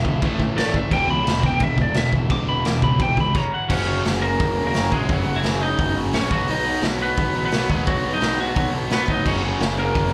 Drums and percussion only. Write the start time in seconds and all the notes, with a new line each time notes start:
0.05 kick
0.22 kick, crash
0.40 kick
0.58 snare, crash
0.74 kick
0.91 kick, crash
1.27 snare, crash
1.43 kick
1.60 kick, crash
1.78 kick
1.94 snare, crash
2.13 kick
2.30 kick, crash
2.65 snare, crash
2.82 kick
2.99 kick, crash
3.17 kick
3.34 kick, crash
3.70 kick, crash
4.05 snare, open hi-hat
4.40 kick, open hi-hat
4.74 snare, open hi-hat
4.92 kick
5.09 kick, open hi-hat
5.43 snare, open hi-hat
5.79 kick, open hi-hat
6.13 snare, open hi-hat
6.31 kick
6.48 open hi-hat
6.82 snare, open hi-hat
7.17 kick, open hi-hat
7.52 snare, open hi-hat
7.70 kick
7.87 kick, open hi-hat
8.21 snare, open hi-hat
8.56 kick, open hi-hat
8.91 snare, open hi-hat
9.08 kick
9.26 kick, crash
9.60 snare, open hi-hat
9.95 kick, open hi-hat